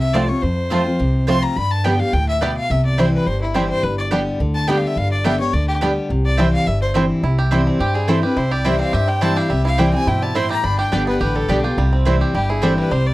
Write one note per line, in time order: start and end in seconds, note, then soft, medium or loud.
0.00 0.30 C2 medium
0.00 0.40 C3 medium
0.00 0.15 E5 loud
0.14 0.29 F3 medium
0.14 0.29 A3 medium
0.14 0.22 A3 medium
0.14 0.24 C4 loud
0.14 0.29 C4 medium
0.14 0.22 C4 medium
0.14 0.24 F4 loud
0.14 0.28 F4 medium
0.14 0.22 F4 medium
0.14 0.24 C5 loud
0.14 0.30 D5 medium
0.14 0.24 A5 loud
0.28 0.43 C4 medium
0.28 0.42 F4 medium
0.28 0.44 C#5 medium
0.42 0.87 F2 medium
0.42 0.97 F2 medium
0.42 1.28 C5 medium
0.70 0.85 F3 medium
0.70 0.86 A3 loud
0.70 0.78 A3 medium
0.70 0.80 C4 medium
0.70 0.86 C4 loud
0.70 0.78 C4 medium
0.70 0.81 F4 medium
0.70 0.79 F4 medium
0.70 0.85 F4 loud
0.70 0.81 C5 medium
0.70 0.81 A5 loud
0.86 1.00 C4 soft
0.86 0.99 F4 medium
0.99 1.44 C2 medium
0.99 1.54 C3 medium
1.27 1.55 F3 medium
1.27 1.55 A3 medium
1.27 1.35 A3 medium
1.27 1.37 C4 medium
1.27 1.55 C4 medium
1.27 1.35 C4 medium
1.27 1.37 F4 medium
1.27 1.56 F4 medium
1.27 1.35 F4 medium
1.27 1.38 C5 loud
1.27 1.38 A5 loud
1.27 1.45 C6 loud
1.43 1.58 A#5 loud
1.56 2.01 G2 medium
1.56 2.11 G2 medium
1.56 1.73 B5 loud
1.71 1.86 A5 loud
1.84 1.99 D3 medium
1.84 1.92 G3 medium
1.84 1.99 G3 loud
1.84 1.94 B3 medium
1.84 1.92 B3 medium
1.84 2.00 B3 loud
1.84 1.92 D4 medium
1.84 1.94 G4 loud
1.84 1.98 G4 loud
1.84 1.94 D5 medium
1.84 2.01 G5 medium
1.84 1.94 G5 medium
2.00 2.14 B3 soft
2.00 2.13 G4 medium
2.00 2.15 F5 loud
2.13 2.57 D2 medium
2.13 2.40 A2 medium
2.13 2.28 G5 loud
2.29 2.44 E5 medium
2.41 2.69 B2 medium
2.41 2.48 G3 medium
2.41 2.51 B3 medium
2.41 2.49 B3 medium
2.41 2.49 D4 medium
2.41 2.51 G4 medium
2.41 2.51 D5 medium
2.41 2.56 D5 medium
2.41 2.51 G5 loud
2.57 2.72 F5 loud
2.70 3.14 C2 medium
2.70 3.24 C3 medium
2.70 2.85 E5 medium
2.85 3.01 D5 medium
2.98 3.25 E3 medium
2.98 3.05 G3 medium
2.98 3.26 G3 loud
2.98 3.07 C4 medium
2.98 3.05 C4 medium
2.98 3.26 C4 medium
2.98 3.08 E4 medium
2.98 3.05 E4 medium
2.98 3.26 E4 loud
2.98 3.08 C5 medium
2.98 3.13 C5 medium
2.98 3.08 G5 medium
3.14 3.28 B4 medium
3.26 3.71 G1 medium
3.26 3.81 G2 medium
3.26 3.41 C5 loud
3.42 3.56 E4 medium
3.54 3.82 E3 medium
3.54 3.62 G3 medium
3.54 3.82 G3 medium
3.54 3.64 C4 medium
3.54 3.62 C4 medium
3.54 3.83 C4 medium
3.54 3.64 E4 medium
3.54 3.62 E4 medium
3.54 3.83 E4 medium
3.54 3.69 G4 medium
3.54 3.64 C5 medium
3.54 3.65 G5 loud
3.69 3.85 C5 loud
3.83 4.27 G1 medium
3.83 4.38 G2 medium
3.83 3.97 B4 loud
3.98 4.06 D5 medium
4.11 4.39 D3 loud
4.11 4.18 G3 medium
4.11 4.39 G3 loud
4.11 4.21 B3 medium
4.11 4.18 B3 medium
4.11 4.39 B3 loud
4.11 4.19 D4 medium
4.11 4.21 G4 loud
4.11 4.40 G4 loud
4.11 4.21 D5 medium
4.11 4.21 G5 loud
4.40 4.84 D2 medium
4.40 4.67 D3 medium
4.54 4.69 A5 loud
4.68 4.95 D3 medium
4.68 4.96 G3 medium
4.68 4.75 G3 medium
4.68 4.77 B3 medium
4.68 4.96 B3 medium
4.68 4.75 B3 medium
4.68 4.76 D4 medium
4.68 4.78 G4 medium
4.68 4.96 G4 loud
4.68 4.78 D5 medium
4.68 4.79 G5 medium
4.68 4.78 G5 loud
4.77 4.89 F5 medium
4.87 4.99 E5 medium
4.96 5.40 G1 medium
4.96 5.51 G2 medium
4.96 5.11 F5 loud
5.12 5.26 D5 medium
5.24 5.39 D3 loud
5.24 5.39 G3 medium
5.24 5.32 G3 medium
5.24 5.34 B3 medium
5.24 5.40 B3 loud
5.24 5.32 B3 medium
5.24 5.32 D4 medium
5.24 5.34 G4 medium
5.24 5.38 G4 loud
5.24 5.34 D5 loud
5.24 5.39 E5 loud
5.24 5.35 G5 medium
5.40 5.54 B3 soft
5.40 5.53 G4 medium
5.40 5.55 C#5 medium
5.53 5.97 D2 medium
5.53 5.80 D3 loud
5.53 5.67 D5 medium
5.68 5.76 G4 loud
5.81 6.09 D3 medium
5.81 6.09 G3 medium
5.81 5.89 G3 medium
5.81 5.91 B3 medium
5.81 6.09 B3 loud
5.81 5.89 B3 medium
5.81 5.89 D4 medium
5.81 5.91 G4 medium
5.81 6.09 G4 loud
5.81 5.91 D5 loud
5.81 5.91 G5 medium
6.10 6.54 C2 medium
6.10 6.64 C3 medium
6.25 6.40 D5 loud
6.37 6.65 E3 loud
6.37 6.66 G3 loud
6.37 6.45 G3 medium
6.37 6.47 C4 medium
6.37 6.66 C4 loud
6.37 6.45 C4 medium
6.37 6.48 E4 medium
6.37 6.46 E4 medium
6.37 6.66 E4 loud
6.37 6.48 C5 medium
6.37 6.52 E5 medium
6.37 6.48 G5 medium
6.53 6.69 F5 loud
6.67 7.11 G1 medium
6.67 7.21 G2 medium
6.67 6.81 E5 medium
6.82 6.90 C5 loud
6.94 7.22 E3 medium
6.94 7.22 G3 medium
6.94 7.02 G3 medium
6.94 7.04 C4 medium
6.94 7.23 C4 medium
6.94 7.02 C4 medium
6.94 7.04 E4 medium
6.94 7.23 E4 medium
6.94 7.02 E4 medium
6.94 7.04 C5 medium
6.94 7.05 G5 medium
7.23 7.67 C2 medium
7.23 7.77 C3 medium
7.23 7.52 E4 medium
7.39 7.80 G4 medium
7.51 7.79 E3 loud
7.51 7.79 G3 medium
7.51 7.61 C4 medium
7.51 7.79 C4 medium
7.51 7.61 E4 medium
7.51 8.08 E4 medium
7.51 7.79 E4 loud
7.51 7.61 C5 medium
7.51 7.61 G5 medium
7.67 8.79 C4 medium
7.79 8.24 G2 medium
7.79 8.34 G2 loud
7.79 7.96 G4 medium
7.79 8.23 G4 medium
7.95 9.07 G3 medium
7.95 8.09 G#4 medium
8.08 8.22 E3 medium
8.08 8.23 G3 medium
8.08 8.17 C4 medium
8.08 8.23 C4 loud
8.08 8.18 E4 medium
8.08 8.36 E4 medium
8.08 8.22 E4 medium
8.08 8.22 A4 medium
8.08 8.18 C5 loud
8.08 8.18 G5 loud
8.23 8.37 C4 medium
8.23 8.36 E4 medium
8.23 8.51 G4 medium
8.23 8.39 B4 medium
8.37 8.81 C2 medium
8.37 8.91 C3 medium
8.37 8.64 E4 medium
8.37 8.53 C5 medium
8.51 8.93 G4 medium
8.51 8.67 D5 medium
8.65 8.92 E3 loud
8.65 8.93 G3 loud
8.65 8.74 C4 loud
8.65 8.93 C4 loud
8.65 9.05 E4 medium
8.65 8.74 E4 medium
8.65 8.93 E4 loud
8.65 8.75 C5 medium
8.65 8.79 E5 medium
8.65 8.75 G5 loud
8.79 9.19 C4 medium
8.79 8.96 F5 loud
8.93 9.38 G2 medium
8.93 9.48 G2 medium
8.93 9.36 G4 medium
8.93 9.10 E5 loud
9.08 9.49 G3 medium
9.08 9.24 G5 loud
9.21 9.49 E3 medium
9.21 9.49 G3 medium
9.21 9.31 C4 medium
9.21 9.50 C4 loud
9.21 9.31 E4 medium
9.21 9.62 E4 medium
9.21 9.50 E4 loud
9.21 9.31 C5 loud
9.21 9.31 G5 loud
9.21 9.39 A5 loud
9.36 9.78 G4 medium
9.36 9.52 F5 medium
9.50 9.94 C2 medium
9.50 10.05 C3 medium
9.50 10.22 G3 medium
9.50 9.65 E5 loud
9.65 10.04 E4 medium
9.65 9.81 F5 loud
9.78 9.93 E3 loud
9.78 9.93 G3 loud
9.78 9.88 C4 medium
9.78 9.93 C4 loud
9.78 9.88 E4 medium
9.78 9.92 E4 loud
9.78 10.50 G4 medium
9.78 9.88 C5 loud
9.78 9.93 G5 medium
9.78 9.88 G5 loud
9.93 10.33 C4 medium
9.93 10.07 C4 medium
9.93 10.07 E4 medium
9.93 10.10 G#5 loud
10.07 10.51 G2 medium
10.07 10.34 B2 loud
10.07 10.34 E4 medium
10.07 10.24 G5 loud
10.22 11.35 G3 medium
10.22 10.37 A5 medium
10.35 10.63 A2 medium
10.35 10.45 C4 medium
10.35 10.45 E4 medium
10.35 10.63 E4 medium
10.35 10.45 C5 medium
10.35 10.45 G5 loud
10.35 10.50 C6 loud
10.50 10.78 G4 medium
10.50 10.65 A#5 loud
10.64 10.86 G1 medium
10.64 11.18 G2 medium
10.64 10.91 D4 medium
10.64 10.78 B5 loud
10.79 11.20 G4 medium
10.79 10.94 G5 loud
10.92 11.16 G1 medium
10.92 11.06 D3 medium
10.92 11.07 G3 medium
10.92 11.01 B3 medium
10.92 11.07 B3 medium
10.92 11.33 D4 medium
10.92 11.02 G4 medium
10.92 11.06 G4 medium
10.92 11.07 D5 medium
10.92 11.02 D5 loud
10.92 11.02 G5 loud
11.07 11.46 B3 medium
11.07 11.21 B3 medium
11.07 11.20 G4 medium
11.07 11.20 B4 medium
11.21 11.45 A1 medium
11.21 11.48 D3 medium
11.21 11.64 G4 medium
11.21 11.37 B4 medium
11.36 11.78 G3 medium
11.36 11.51 A4 medium
11.49 11.73 B1 medium
11.49 11.63 D3 medium
11.49 11.64 G3 medium
11.49 11.58 B3 medium
11.49 11.64 B3 medium
11.49 11.78 D4 medium
11.49 11.59 G4 medium
11.49 11.65 G4 medium
11.49 11.62 G4 medium
11.49 11.59 D5 medium
11.49 11.59 G5 medium
11.64 11.78 B3 medium
11.64 11.78 F4 medium
11.64 11.77 G4 medium
11.64 12.21 G4 medium
11.77 12.22 C2 medium
11.77 12.32 C3 medium
11.77 12.34 G3 medium
11.93 12.32 C4 medium
12.05 12.33 E3 loud
12.05 12.33 G3 loud
12.05 12.15 C4 medium
12.05 12.34 C4 loud
12.05 12.15 E4 medium
12.05 12.46 E4 medium
12.05 12.34 E4 loud
12.05 12.16 C5 loud
12.05 12.16 G5 loud
12.21 12.63 G4 medium
12.34 12.79 G1 medium
12.34 12.89 G2 medium
12.34 12.78 G3 medium
12.34 12.51 G4 medium
12.50 12.89 E4 medium
12.50 12.64 G#4 medium
12.62 12.90 E3 medium
12.62 12.90 G3 medium
12.62 12.72 C4 medium
12.62 12.90 C4 medium
12.62 12.72 E4 loud
12.62 12.90 E4 loud
12.62 13.14 G4 medium
12.62 12.77 A4 medium
12.62 12.72 C5 loud
12.62 12.72 G5 medium
12.78 12.91 G3 medium
12.78 12.93 B4 medium
12.91 13.14 C2 medium
12.91 13.14 C3 medium
12.91 13.14 G3 medium
12.91 13.08 C5 medium
13.07 13.14 D5 medium